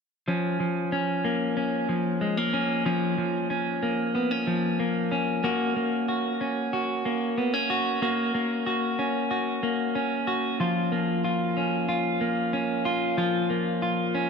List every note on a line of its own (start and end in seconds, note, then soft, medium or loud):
0.28 0.59 F3 medium
0.28 0.92 C#4 soft
0.60 1.88 F3 soft
0.92 1.56 C#4 medium
1.24 2.21 A#3 soft
1.57 2.53 C#4 medium
1.89 2.84 F3 soft
2.21 2.37 G#3 soft
2.37 3.81 A#3 soft
2.53 2.86 C#4 medium
2.86 3.17 F3 medium
2.86 3.50 C#4 medium
3.18 4.46 F3 soft
3.50 4.14 C#4 soft
3.83 4.79 A#3 soft
4.15 4.31 B3 medium
4.31 5.10 C#4 soft
4.47 5.50 F3 soft
4.80 5.43 A#3 soft
5.12 6.40 C#4 medium
5.44 5.76 A#3 medium
5.44 6.08 F#4 medium
5.76 7.05 A#3 soft
6.08 6.73 F#4 soft
6.41 7.37 C#4 soft
6.73 7.70 F#4 soft
7.05 8.02 A#3 soft
7.38 7.54 B3 soft
7.54 8.98 C#4 soft
7.70 8.02 F#4 medium
8.02 8.34 A#3 medium
8.02 8.66 F#4 medium
8.34 9.62 A#3 soft
8.66 9.30 F#4 medium
8.99 9.95 C#4 soft
9.31 10.27 F#4 soft
9.63 10.92 A#3 soft
9.95 11.56 C#4 soft
10.27 10.60 F#4 medium
10.60 13.16 F3 medium
10.60 11.23 F4 soft
10.92 12.20 A#3 soft
11.24 11.87 F4 soft
11.57 12.53 C#4 soft
11.89 12.84 F4 soft
12.21 13.49 A#3 soft
12.53 14.14 C#4 soft
12.85 13.17 F4 medium
13.17 14.30 F3 medium
13.17 13.81 F4 medium
13.50 14.30 A#3 soft
13.82 14.30 F4 soft
14.15 14.30 C#4 soft